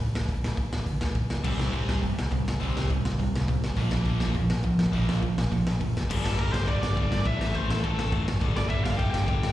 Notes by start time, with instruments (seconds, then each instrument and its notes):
0.14 picked electric bass D1, snare
0.21 kick
0.29 picked electric bass D1, kick, open hi-hat
0.43 picked electric bass D1, snare
0.57 picked electric bass D1, kick, open hi-hat
0.72 picked electric bass D1, snare
0.79 kick
0.86 picked electric bass D2, kick, open hi-hat
1.01 picked electric bass D1, snare
1.15 picked electric bass D1, kick, open hi-hat
1.30 picked electric bass C2, snare
1.37 kick
1.43 picked electric bass C2, overdriven electric guitar C3 G3 C4, kick, crash
1.59 picked electric bass C2, snare
1.72 picked electric bass C2, overdriven electric guitar C3 G3 C4, kick, open hi-hat
1.88 picked electric bass C2, snare
1.96 kick
2.02 picked electric bass G1, overdriven electric guitar C3 G3, kick, open hi-hat
2.18 picked electric bass C2, snare
2.31 picked electric bass C2, overdriven electric guitar C3 G3, kick, open hi-hat
2.47 picked electric bass C2, snare
2.54 kick
2.60 picked electric bass C2, overdriven electric guitar C3 G3 C4, kick, open hi-hat
2.77 picked electric bass C2, snare
2.90 picked electric bass C2, overdriven electric guitar C3 G3, kick, open hi-hat
3.05 picked electric bass C2, snare
3.12 kick
3.19 picked electric bass C2, overdriven electric guitar C3 G3, kick, open hi-hat
3.34 picked electric bass C2, snare
3.48 picked electric bass C2, overdriven electric guitar C3 G3, kick, open hi-hat
3.64 snare
3.70 kick
3.76 picked electric bass A#1, overdriven electric guitar A#2 F3 A#3, kick, open hi-hat
3.91 picked electric bass A#1, snare
4.05 picked electric bass A#1, overdriven electric guitar A#2 F3 A#3, kick, open hi-hat
4.20 picked electric bass A#1, snare
4.28 kick
4.34 picked electric bass F2, overdriven electric guitar A#2 F3, kick, open hi-hat
4.50 picked electric bass A#1, snare
4.63 picked electric bass A#1, overdriven electric guitar A#2 F3, kick, open hi-hat
4.79 picked electric bass A#1, snare
4.86 kick
4.92 picked electric bass A#1, overdriven electric guitar A#2 F3 A#3, kick, open hi-hat
5.08 picked electric bass A#1, snare
5.22 picked electric bass A#1, overdriven electric guitar A#2 F3, kick, open hi-hat
5.38 picked electric bass A#1, snare
5.44 kick
5.50 overdriven electric guitar A#2 F3, picked electric bass A#2, kick, open hi-hat
5.66 picked electric bass A#1, snare
5.80 picked electric bass F#1, overdriven electric guitar A#2 F3, kick, open hi-hat
5.97 snare
6.03 kick
6.09 picked electric bass G1, overdriven electric guitar G2 D3 G3, kick, crash
6.24 picked electric bass G1, lead electric guitar A4, snare
6.37 picked electric bass G1, overdriven electric guitar G2 D3 G3, lead electric guitar A#4, kick, crash
6.53 picked electric bass G1, lead electric guitar C5, snare
6.67 picked electric bass G1, overdriven electric guitar G2 D3 G3, lead electric guitar D5, kick, crash
6.83 picked electric bass G1, lead electric guitar D5, snare
6.96 picked electric bass G1, overdriven electric guitar G2 D3 G3, kick, crash
7.11 picked electric bass G1, snare
7.25 picked electric bass A1, overdriven electric guitar A2 E3 A3, lead electric guitar E5, kick, crash
7.40 picked electric bass A1, snare
7.53 picked electric bass A1, overdriven electric guitar A2 E3 A3, lead electric guitar C5, kick, crash
7.68 picked electric bass A1, lead electric guitar A4, snare
7.82 picked electric bass A1, overdriven electric guitar A2 E3 A3, lead electric guitar A4, kick, crash
7.98 picked electric bass A1, snare
8.11 picked electric bass F#1, overdriven electric guitar A2 E3 A3, kick, crash
8.28 picked electric bass G1, snare
8.41 picked electric bass G1, overdriven electric guitar G2 D3 G3, kick, crash
8.55 picked electric bass G1, lead electric guitar D5, snare
8.69 picked electric bass G1, overdriven electric guitar G2 D3 G3, lead electric guitar E5, kick, crash
8.84 picked electric bass G1, lead electric guitar F5, snare
8.98 picked electric bass G1, overdriven electric guitar G2 D3 G3, lead electric guitar G5, kick, crash
9.11 picked electric bass G1, lead electric guitar G5, snare
9.26 picked electric bass G1, overdriven electric guitar G2 D3 G3, kick, crash
9.43 picked electric bass G1, snare